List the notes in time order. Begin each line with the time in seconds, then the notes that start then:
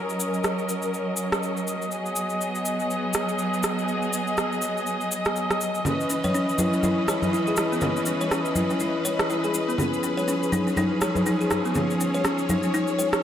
Already playing: F#3 C#4 A#4 D#5
0.09 cabasa
0.20 cabasa
0.34 cabasa
0.44 cross-stick, cabasa
0.58 cabasa
0.69 cabasa
0.82 cabasa
0.94 cabasa
1.16 cabasa
1.32 cross-stick, cabasa
1.43 cabasa
1.57 cabasa
1.67 cabasa
1.82 cabasa
1.91 B3 G#4, cabasa
2.06 cabasa
2.16 cabasa
2.29 cabasa
2.41 cabasa
2.55 cabasa
2.65 cabasa
2.80 cabasa
2.90 cabasa
3.13 cross-stick, cabasa
3.29 cabasa
3.38 cabasa
3.54 cabasa
3.63 cross-stick, cabasa
3.79 cabasa
3.88 cabasa
4.02 cabasa
4.13 cabasa
4.27 cabasa
4.37 cross-stick, cabasa
4.52 cabasa
4.62 cabasa
4.77 cabasa
4.87 cabasa
5.01 cabasa
5.11 cabasa
5.25 cross-stick, cabasa
5.36 cabasa
5.51 cross-stick, cabasa
5.61 cabasa
5.75 cabasa
5.85 E3 C#4 B4, low conga, cabasa
6.01 cabasa
6.10 C#4, cabasa
6.24 C#5, high conga, cabasa
6.34 C#4, cabasa
6.49 cabasa
6.58 E4, high conga, cabasa
6.73 C#4, cabasa
6.83 E4, high conga, cabasa
7.08 C#5, cross-stick, cabasa
7.22 high conga, cabasa
7.33 E4, cabasa
7.47 G#4, cabasa
7.56 E4, cross-stick, cabasa
7.72 B3, cabasa
7.81 C#4, low conga, cabasa
7.96 cabasa
8.06 C#4, cabasa
8.21 C#5, cabasa
8.31 C#4, cross-stick, cabasa
8.45 cabasa
8.55 E4, high conga, cabasa
8.70 C#4, cabasa
8.80 E4, cabasa
9.05 C#5, cabasa
9.19 cross-stick, cabasa
9.30 E4, cabasa
9.44 G#4, cabasa
9.54 E4, cabasa
9.68 B3, cabasa
9.78 F3 C#4 G#4, low conga, cabasa
9.94 cabasa
10.03 C#4, cabasa
10.17 C#5, cabasa
10.28 C#4, cabasa
10.43 cabasa
10.52 D#4, high conga, cabasa
10.67 C#4, cabasa
10.77 D#4, high conga, cabasa
11.01 C#5, cross-stick, cabasa
11.15 high conga, cabasa
11.26 D#4, cabasa
11.41 G#4, cabasa
11.51 D#4, cross-stick, high conga, cabasa
11.65 B3, cabasa
11.75 C#4 C#5, low conga, cabasa
11.90 cabasa
12.00 C#4, cabasa
12.14 C#5, cabasa
12.25 C#4, cross-stick, cabasa
12.38 cabasa
12.49 D#4, high conga, cabasa
12.63 C#4, cabasa
12.74 D#4, cabasa
12.87 cabasa
12.99 C#5, cabasa
13.13 cross-stick, cabasa